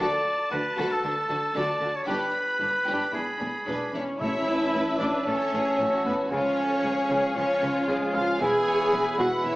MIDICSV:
0, 0, Header, 1, 12, 480
1, 0, Start_track
1, 0, Tempo, 525855
1, 1897, Time_signature, 4, 2, 24, 8
1, 8723, End_track
2, 0, Start_track
2, 0, Title_t, "Flute section"
2, 0, Program_c, 0, 73
2, 3840, Note_on_c, 0, 81, 46
2, 5723, Note_off_c, 0, 81, 0
2, 5759, Note_on_c, 0, 80, 49
2, 7638, Note_off_c, 0, 80, 0
2, 7686, Note_on_c, 0, 83, 49
2, 8723, Note_off_c, 0, 83, 0
2, 8723, End_track
3, 0, Start_track
3, 0, Title_t, "Trumpet"
3, 0, Program_c, 1, 56
3, 3591, Note_on_c, 1, 73, 44
3, 3834, Note_on_c, 1, 76, 53
3, 3848, Note_off_c, 1, 73, 0
3, 4559, Note_off_c, 1, 76, 0
3, 4564, Note_on_c, 1, 74, 49
3, 4673, Note_off_c, 1, 74, 0
3, 4802, Note_on_c, 1, 73, 57
3, 5506, Note_off_c, 1, 73, 0
3, 5521, Note_on_c, 1, 71, 50
3, 5750, Note_on_c, 1, 73, 58
3, 5764, Note_off_c, 1, 71, 0
3, 6712, Note_off_c, 1, 73, 0
3, 6719, Note_on_c, 1, 73, 60
3, 7199, Note_on_c, 1, 68, 58
3, 7212, Note_off_c, 1, 73, 0
3, 7438, Note_on_c, 1, 77, 59
3, 7452, Note_off_c, 1, 68, 0
3, 7673, Note_off_c, 1, 77, 0
3, 7678, Note_on_c, 1, 80, 62
3, 8378, Note_off_c, 1, 80, 0
3, 8387, Note_on_c, 1, 78, 56
3, 8495, Note_off_c, 1, 78, 0
3, 8616, Note_on_c, 1, 76, 68
3, 8723, Note_off_c, 1, 76, 0
3, 8723, End_track
4, 0, Start_track
4, 0, Title_t, "Oboe"
4, 0, Program_c, 2, 68
4, 0, Note_on_c, 2, 74, 79
4, 435, Note_off_c, 2, 74, 0
4, 467, Note_on_c, 2, 71, 72
4, 839, Note_on_c, 2, 69, 51
4, 852, Note_off_c, 2, 71, 0
4, 944, Note_off_c, 2, 69, 0
4, 949, Note_on_c, 2, 69, 58
4, 1414, Note_off_c, 2, 69, 0
4, 1434, Note_on_c, 2, 74, 66
4, 1781, Note_on_c, 2, 73, 53
4, 1795, Note_off_c, 2, 74, 0
4, 1889, Note_off_c, 2, 73, 0
4, 1894, Note_on_c, 2, 71, 65
4, 2845, Note_off_c, 2, 71, 0
4, 2865, Note_on_c, 2, 68, 42
4, 3583, Note_off_c, 2, 68, 0
4, 3836, Note_on_c, 2, 76, 52
4, 5721, Note_off_c, 2, 76, 0
4, 5774, Note_on_c, 2, 77, 50
4, 7681, Note_on_c, 2, 76, 56
4, 7694, Note_off_c, 2, 77, 0
4, 8723, Note_off_c, 2, 76, 0
4, 8723, End_track
5, 0, Start_track
5, 0, Title_t, "Clarinet"
5, 0, Program_c, 3, 71
5, 3841, Note_on_c, 3, 73, 43
5, 7638, Note_off_c, 3, 73, 0
5, 7679, Note_on_c, 3, 71, 48
5, 8723, Note_off_c, 3, 71, 0
5, 8723, End_track
6, 0, Start_track
6, 0, Title_t, "Violin section"
6, 0, Program_c, 4, 48
6, 0, Note_on_c, 4, 69, 54
6, 209, Note_off_c, 4, 69, 0
6, 460, Note_on_c, 4, 66, 42
6, 533, Note_off_c, 4, 66, 0
6, 705, Note_on_c, 4, 69, 56
6, 927, Note_off_c, 4, 69, 0
6, 947, Note_on_c, 4, 62, 42
6, 1020, Note_off_c, 4, 62, 0
6, 1183, Note_on_c, 4, 66, 39
6, 1256, Note_off_c, 4, 66, 0
6, 1414, Note_on_c, 4, 69, 47
6, 1638, Note_off_c, 4, 69, 0
6, 1656, Note_on_c, 4, 62, 39
6, 1729, Note_off_c, 4, 62, 0
6, 1884, Note_on_c, 4, 67, 49
6, 2113, Note_off_c, 4, 67, 0
6, 2371, Note_on_c, 4, 62, 29
6, 2444, Note_off_c, 4, 62, 0
6, 2605, Note_on_c, 4, 67, 40
6, 2840, Note_off_c, 4, 67, 0
6, 2852, Note_on_c, 4, 64, 31
6, 2925, Note_off_c, 4, 64, 0
6, 3107, Note_on_c, 4, 68, 28
6, 3180, Note_off_c, 4, 68, 0
6, 3358, Note_on_c, 4, 71, 39
6, 3584, Note_off_c, 4, 71, 0
6, 3601, Note_on_c, 4, 64, 34
6, 3605, Note_on_c, 4, 73, 37
6, 3674, Note_off_c, 4, 64, 0
6, 3678, Note_off_c, 4, 73, 0
6, 3837, Note_on_c, 4, 76, 55
6, 4548, Note_off_c, 4, 76, 0
6, 4561, Note_on_c, 4, 74, 48
6, 4634, Note_off_c, 4, 74, 0
6, 4818, Note_on_c, 4, 73, 51
6, 5514, Note_off_c, 4, 73, 0
6, 5538, Note_on_c, 4, 71, 44
6, 5611, Note_off_c, 4, 71, 0
6, 5769, Note_on_c, 4, 73, 59
6, 6703, Note_off_c, 4, 73, 0
6, 6727, Note_on_c, 4, 73, 53
6, 7192, Note_off_c, 4, 73, 0
6, 7195, Note_on_c, 4, 68, 49
6, 7268, Note_off_c, 4, 68, 0
6, 7432, Note_on_c, 4, 77, 56
6, 7666, Note_on_c, 4, 80, 67
6, 7668, Note_off_c, 4, 77, 0
6, 8386, Note_off_c, 4, 80, 0
6, 8400, Note_on_c, 4, 78, 54
6, 8621, Note_on_c, 4, 76, 62
6, 8628, Note_off_c, 4, 78, 0
6, 8723, Note_off_c, 4, 76, 0
6, 8723, End_track
7, 0, Start_track
7, 0, Title_t, "Violin section"
7, 0, Program_c, 5, 48
7, 0, Note_on_c, 5, 81, 53
7, 1859, Note_off_c, 5, 81, 0
7, 1903, Note_on_c, 5, 83, 42
7, 3625, Note_off_c, 5, 83, 0
7, 3852, Note_on_c, 5, 73, 53
7, 4072, Note_off_c, 5, 73, 0
7, 4097, Note_on_c, 5, 71, 51
7, 4813, Note_off_c, 5, 71, 0
7, 4821, Note_on_c, 5, 69, 49
7, 5053, Note_off_c, 5, 69, 0
7, 5063, Note_on_c, 5, 68, 45
7, 5289, Note_on_c, 5, 66, 49
7, 5293, Note_off_c, 5, 68, 0
7, 5763, Note_off_c, 5, 66, 0
7, 5786, Note_on_c, 5, 65, 48
7, 6008, Note_off_c, 5, 65, 0
7, 6022, Note_on_c, 5, 69, 47
7, 6250, Note_off_c, 5, 69, 0
7, 6252, Note_on_c, 5, 68, 43
7, 6724, Note_off_c, 5, 68, 0
7, 6727, Note_on_c, 5, 65, 53
7, 7679, Note_off_c, 5, 65, 0
7, 7683, Note_on_c, 5, 64, 50
7, 7756, Note_off_c, 5, 64, 0
7, 7905, Note_on_c, 5, 73, 57
7, 8143, Note_off_c, 5, 73, 0
7, 8159, Note_on_c, 5, 71, 50
7, 8383, Note_on_c, 5, 68, 48
7, 8394, Note_off_c, 5, 71, 0
7, 8456, Note_off_c, 5, 68, 0
7, 8615, Note_on_c, 5, 73, 64
7, 8723, Note_off_c, 5, 73, 0
7, 8723, End_track
8, 0, Start_track
8, 0, Title_t, "Viola section"
8, 0, Program_c, 6, 48
8, 0, Note_on_c, 6, 66, 48
8, 209, Note_off_c, 6, 66, 0
8, 469, Note_on_c, 6, 66, 36
8, 542, Note_off_c, 6, 66, 0
8, 708, Note_on_c, 6, 66, 53
8, 929, Note_off_c, 6, 66, 0
8, 946, Note_on_c, 6, 66, 37
8, 1019, Note_off_c, 6, 66, 0
8, 1188, Note_on_c, 6, 66, 36
8, 1261, Note_off_c, 6, 66, 0
8, 1423, Note_on_c, 6, 66, 46
8, 1643, Note_off_c, 6, 66, 0
8, 1667, Note_on_c, 6, 66, 37
8, 1740, Note_off_c, 6, 66, 0
8, 1894, Note_on_c, 6, 62, 43
8, 2118, Note_off_c, 6, 62, 0
8, 2374, Note_on_c, 6, 62, 30
8, 2447, Note_off_c, 6, 62, 0
8, 2625, Note_on_c, 6, 62, 40
8, 2845, Note_off_c, 6, 62, 0
8, 2856, Note_on_c, 6, 62, 31
8, 2929, Note_off_c, 6, 62, 0
8, 3099, Note_on_c, 6, 62, 26
8, 3172, Note_off_c, 6, 62, 0
8, 3340, Note_on_c, 6, 62, 43
8, 3574, Note_off_c, 6, 62, 0
8, 3585, Note_on_c, 6, 62, 31
8, 3586, Note_on_c, 6, 61, 46
8, 3658, Note_off_c, 6, 62, 0
8, 3818, Note_off_c, 6, 61, 0
8, 3838, Note_on_c, 6, 64, 66
8, 4548, Note_off_c, 6, 64, 0
8, 4565, Note_on_c, 6, 62, 52
8, 4801, Note_off_c, 6, 62, 0
8, 4807, Note_on_c, 6, 61, 59
8, 5523, Note_off_c, 6, 61, 0
8, 5531, Note_on_c, 6, 59, 58
8, 5604, Note_off_c, 6, 59, 0
8, 5760, Note_on_c, 6, 61, 67
8, 6698, Note_off_c, 6, 61, 0
8, 6713, Note_on_c, 6, 61, 65
8, 7185, Note_off_c, 6, 61, 0
8, 7194, Note_on_c, 6, 56, 58
8, 7430, Note_off_c, 6, 56, 0
8, 7431, Note_on_c, 6, 65, 64
8, 7667, Note_on_c, 6, 68, 78
8, 7672, Note_off_c, 6, 65, 0
8, 8372, Note_off_c, 6, 68, 0
8, 8386, Note_on_c, 6, 66, 64
8, 8459, Note_off_c, 6, 66, 0
8, 8615, Note_on_c, 6, 64, 79
8, 8723, Note_off_c, 6, 64, 0
8, 8723, End_track
9, 0, Start_track
9, 0, Title_t, "French horn section"
9, 0, Program_c, 7, 60
9, 3829, Note_on_c, 7, 52, 47
9, 3837, Note_on_c, 7, 61, 45
9, 4763, Note_off_c, 7, 52, 0
9, 4767, Note_off_c, 7, 61, 0
9, 4799, Note_on_c, 7, 61, 45
9, 4803, Note_on_c, 7, 52, 47
9, 5738, Note_off_c, 7, 61, 0
9, 5741, Note_off_c, 7, 52, 0
9, 5750, Note_on_c, 7, 61, 44
9, 5751, Note_on_c, 7, 53, 45
9, 6686, Note_off_c, 7, 53, 0
9, 6690, Note_off_c, 7, 61, 0
9, 6697, Note_on_c, 7, 53, 44
9, 6701, Note_on_c, 7, 61, 47
9, 7177, Note_off_c, 7, 53, 0
9, 7179, Note_off_c, 7, 61, 0
9, 7203, Note_on_c, 7, 53, 49
9, 7204, Note_on_c, 7, 61, 47
9, 7665, Note_on_c, 7, 59, 46
9, 7669, Note_off_c, 7, 53, 0
9, 7669, Note_off_c, 7, 61, 0
9, 7672, Note_on_c, 7, 52, 48
9, 8618, Note_off_c, 7, 59, 0
9, 8627, Note_off_c, 7, 52, 0
9, 8629, Note_on_c, 7, 59, 51
9, 8641, Note_on_c, 7, 52, 48
9, 8723, Note_off_c, 7, 52, 0
9, 8723, Note_off_c, 7, 59, 0
9, 8723, End_track
10, 0, Start_track
10, 0, Title_t, "Cello section"
10, 0, Program_c, 8, 48
10, 469, Note_on_c, 8, 50, 41
10, 542, Note_off_c, 8, 50, 0
10, 715, Note_on_c, 8, 50, 54
10, 788, Note_off_c, 8, 50, 0
10, 947, Note_on_c, 8, 50, 35
10, 1020, Note_off_c, 8, 50, 0
10, 1182, Note_on_c, 8, 50, 38
10, 1255, Note_off_c, 8, 50, 0
10, 1422, Note_on_c, 8, 50, 53
10, 1495, Note_off_c, 8, 50, 0
10, 1646, Note_on_c, 8, 50, 32
10, 1719, Note_off_c, 8, 50, 0
10, 1892, Note_on_c, 8, 43, 48
10, 1965, Note_off_c, 8, 43, 0
10, 2375, Note_on_c, 8, 43, 34
10, 2448, Note_off_c, 8, 43, 0
10, 2619, Note_on_c, 8, 43, 46
10, 2692, Note_off_c, 8, 43, 0
10, 2870, Note_on_c, 8, 40, 27
10, 2943, Note_off_c, 8, 40, 0
10, 3110, Note_on_c, 8, 40, 30
10, 3183, Note_off_c, 8, 40, 0
10, 3355, Note_on_c, 8, 40, 42
10, 3428, Note_off_c, 8, 40, 0
10, 3604, Note_on_c, 8, 40, 29
10, 3677, Note_off_c, 8, 40, 0
10, 3856, Note_on_c, 8, 45, 52
10, 3929, Note_off_c, 8, 45, 0
10, 4329, Note_on_c, 8, 45, 39
10, 4402, Note_off_c, 8, 45, 0
10, 4560, Note_on_c, 8, 45, 54
10, 4633, Note_off_c, 8, 45, 0
10, 4801, Note_on_c, 8, 45, 39
10, 4874, Note_off_c, 8, 45, 0
10, 5043, Note_on_c, 8, 45, 38
10, 5116, Note_off_c, 8, 45, 0
10, 5283, Note_on_c, 8, 45, 56
10, 5356, Note_off_c, 8, 45, 0
10, 5526, Note_on_c, 8, 45, 39
10, 5599, Note_off_c, 8, 45, 0
10, 5765, Note_on_c, 8, 49, 59
10, 5838, Note_off_c, 8, 49, 0
10, 6251, Note_on_c, 8, 49, 41
10, 6324, Note_off_c, 8, 49, 0
10, 6482, Note_on_c, 8, 49, 55
10, 6555, Note_off_c, 8, 49, 0
10, 6728, Note_on_c, 8, 49, 39
10, 6801, Note_off_c, 8, 49, 0
10, 6957, Note_on_c, 8, 49, 44
10, 7030, Note_off_c, 8, 49, 0
10, 7195, Note_on_c, 8, 49, 55
10, 7268, Note_off_c, 8, 49, 0
10, 7450, Note_on_c, 8, 49, 41
10, 7523, Note_off_c, 8, 49, 0
10, 7678, Note_on_c, 8, 40, 62
10, 7751, Note_off_c, 8, 40, 0
10, 8150, Note_on_c, 8, 40, 46
10, 8223, Note_off_c, 8, 40, 0
10, 8382, Note_on_c, 8, 40, 64
10, 8455, Note_off_c, 8, 40, 0
10, 8628, Note_on_c, 8, 40, 45
10, 8701, Note_off_c, 8, 40, 0
10, 8723, End_track
11, 0, Start_track
11, 0, Title_t, "Timpani"
11, 0, Program_c, 10, 47
11, 3843, Note_on_c, 10, 45, 56
11, 4529, Note_off_c, 10, 45, 0
11, 8723, End_track
12, 0, Start_track
12, 0, Title_t, "Double bass section"
12, 0, Program_c, 11, 48
12, 473, Note_on_c, 11, 38, 40
12, 546, Note_off_c, 11, 38, 0
12, 714, Note_on_c, 11, 38, 56
12, 787, Note_off_c, 11, 38, 0
12, 951, Note_on_c, 11, 38, 37
12, 1024, Note_off_c, 11, 38, 0
12, 1189, Note_on_c, 11, 38, 35
12, 1262, Note_off_c, 11, 38, 0
12, 1416, Note_on_c, 11, 38, 52
12, 1489, Note_off_c, 11, 38, 0
12, 1662, Note_on_c, 11, 38, 35
12, 1735, Note_off_c, 11, 38, 0
12, 1894, Note_on_c, 11, 31, 50
12, 1967, Note_off_c, 11, 31, 0
12, 2376, Note_on_c, 11, 31, 32
12, 2449, Note_off_c, 11, 31, 0
12, 2619, Note_on_c, 11, 31, 43
12, 2692, Note_off_c, 11, 31, 0
12, 2861, Note_on_c, 11, 28, 28
12, 2934, Note_off_c, 11, 28, 0
12, 3113, Note_on_c, 11, 28, 30
12, 3186, Note_off_c, 11, 28, 0
12, 3358, Note_on_c, 11, 28, 42
12, 3431, Note_off_c, 11, 28, 0
12, 3601, Note_on_c, 11, 28, 28
12, 3674, Note_off_c, 11, 28, 0
12, 3845, Note_on_c, 11, 33, 50
12, 3918, Note_off_c, 11, 33, 0
12, 4320, Note_on_c, 11, 33, 38
12, 4393, Note_off_c, 11, 33, 0
12, 4562, Note_on_c, 11, 33, 47
12, 4635, Note_off_c, 11, 33, 0
12, 4812, Note_on_c, 11, 33, 36
12, 4885, Note_off_c, 11, 33, 0
12, 5057, Note_on_c, 11, 33, 40
12, 5130, Note_off_c, 11, 33, 0
12, 5297, Note_on_c, 11, 33, 55
12, 5370, Note_off_c, 11, 33, 0
12, 5530, Note_on_c, 11, 33, 37
12, 5603, Note_off_c, 11, 33, 0
12, 5765, Note_on_c, 11, 37, 57
12, 5838, Note_off_c, 11, 37, 0
12, 6246, Note_on_c, 11, 37, 41
12, 6319, Note_off_c, 11, 37, 0
12, 6487, Note_on_c, 11, 37, 51
12, 6560, Note_off_c, 11, 37, 0
12, 6721, Note_on_c, 11, 37, 40
12, 6794, Note_off_c, 11, 37, 0
12, 6961, Note_on_c, 11, 37, 39
12, 7034, Note_off_c, 11, 37, 0
12, 7204, Note_on_c, 11, 37, 60
12, 7277, Note_off_c, 11, 37, 0
12, 7450, Note_on_c, 11, 37, 39
12, 7523, Note_off_c, 11, 37, 0
12, 7686, Note_on_c, 11, 28, 59
12, 7759, Note_off_c, 11, 28, 0
12, 8155, Note_on_c, 11, 28, 44
12, 8228, Note_off_c, 11, 28, 0
12, 8399, Note_on_c, 11, 28, 60
12, 8472, Note_off_c, 11, 28, 0
12, 8635, Note_on_c, 11, 28, 42
12, 8708, Note_off_c, 11, 28, 0
12, 8723, End_track
0, 0, End_of_file